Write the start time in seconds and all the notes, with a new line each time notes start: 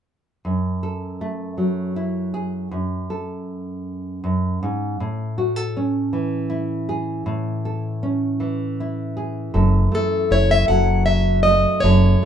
0.45 F#2
0.83 A4
1.21 A3
1.58 F#3
1.96 E4
2.34 G#4
2.71 F#2
3.10 A4
4.24 F#2
4.63 G#2
5.00 A2
5.38 F#4
5.56 A4
5.77 C#4
6.13 E3
6.50 E4
6.89 G#4
7.26 A2
7.65 A4
8.03 C#4
8.40 E3
8.80 E4
9.17 G#4
9.54 F#1 F#2 A4
9.92 A3 A4
10.31 F#1 E4 C#5
10.51 E5
10.68 F#1 F#3 A4 F#5
11.06 E5
11.43 A3 D#5
11.80 F#1 F#2 C#5
11.85 A4